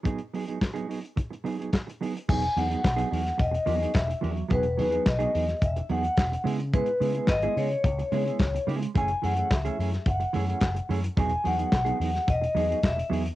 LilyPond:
<<
  \new Staff \with { instrumentName = "Vibraphone" } { \time 4/4 \key e \major \tempo 4 = 108 r1 | gis''8 fis''4. dis''4 e''8. r16 | b'4 dis''4 e''8 fis''4 r8 | b'4 dis''8 cis''2 r8 |
gis''8 fis''8 e''4 fis''4. r8 | gis''8 fis''4. dis''4 e''8. r16 | }
  \new Staff \with { instrumentName = "Clean electric guitar" } { \time 4/4 \key e \major <fis b dis' gis'>16 r16 <fis b dis' gis'>16 <fis b dis' gis'>16 r16 <fis b dis' gis'>16 <fis b dis' gis'>16 r8. <fis b dis' gis'>16 <fis b dis' gis'>16 r8 <fis b dis' gis'>16 r16 | <fis b dis' gis'>16 r16 <fis b dis' gis'>16 <fis b dis' gis'>16 r16 <fis b dis' gis'>16 <fis b dis' gis'>16 r8. <fis b dis' gis'>16 <fis b dis' gis'>16 r8 <fis b dis' gis'>16 r16 | <fis b dis' gis'>16 r16 <fis b dis' gis'>16 <fis b dis' gis'>16 r16 <fis b dis' gis'>16 <fis b dis' gis'>16 r8. <fis b dis' gis'>16 r8. <gis b e' gis'>16 r16 | <gis b e' gis'>16 r16 <gis b e' gis'>16 <gis b e' gis'>16 r16 <gis b e' gis'>16 <gis b e' gis'>16 r8. <gis b e' gis'>16 <gis b e' gis'>16 r8 <gis b e' gis'>16 r16 |
<e a cis' gis'>16 r16 <e a cis' gis'>16 <e a cis' gis'>16 r16 <e a cis' gis'>16 <e a cis' gis'>16 r8. <e a cis' gis'>16 <e a cis' gis'>16 r8 <e a cis' gis'>16 r16 | <fis b dis' gis'>16 r16 <fis b dis' gis'>16 <fis b dis' gis'>16 r16 <fis b dis' gis'>16 <fis b dis' gis'>16 r8. <fis b dis' gis'>16 <fis b dis' gis'>16 r8 <fis b dis' gis'>16 r16 | }
  \new Staff \with { instrumentName = "Picked electric bass" } { \clef bass \time 4/4 \key e \major r1 | e,,8 e,8 b,,8 e,8 e,,8 e,8 e,,8 e,8 | e,,8 e,8 b,,8 e,8 e,,8 e,8 e,,8 cis8~ | cis8 cis8 gis,,8 cis8 cis,8 cis8 cis,8 cis8 |
fis,,8 fis,8 cis,8 fis,8 fis,,8 fis,8 fis,,8 fis,8 | e,,8 e,8 b,,8 e,8 e,,8 e,8 e,,8 e,8 | }
  \new DrumStaff \with { instrumentName = "Drums" } \drummode { \time 4/4 <hh bd>16 hh16 hho16 hh16 <hc hh bd sn>16 hh16 hho16 hh16 <hh bd>16 hh16 hho16 hh16 <hc hh bd sn>16 hh16 hho16 hh16 | <cymc bd>16 hh16 hho16 hh16 <hc hh bd sn>16 hh16 hho16 <hh sn>16 <hh bd>16 hh16 hho16 hh16 <hc hh bd sn>16 hh16 hho16 hh16 | <hh bd>16 hh16 hho16 hh16 <hc hh bd sn>16 hh16 hho16 <hh sn>16 <hh bd>16 hh16 hho16 hh16 <hc hh bd sn>16 hh16 hho16 hh16 | <hh bd>16 hh16 hho16 hh16 <hc hh bd sn>16 hh16 hho16 hh16 <hh bd>16 hh16 hho16 hh16 <hc hh bd sn>16 hh16 hho16 hh16 |
<hh bd>16 hh16 hho16 hh16 <hc hh bd sn>16 hh16 hho16 <hh sn>16 <hh bd>16 hh16 hho16 hh16 <hc hh bd sn>16 hh16 hho16 hh16 | <hh bd>16 hh16 hho16 hh16 <hc hh bd sn>16 hh16 hho16 <hh sn>16 <hh bd>16 hh16 hho16 hh16 <hc hh bd sn>16 hh16 hho16 hh16 | }
>>